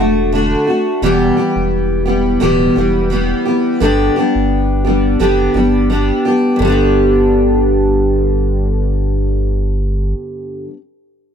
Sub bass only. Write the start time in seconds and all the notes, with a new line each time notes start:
0.00 E1
1.02 E1
1.56 E1
2.42 D1
2.77 E1
3.81 G1
4.35 G1
5.20 F#1
5.55 G1
6.60 G1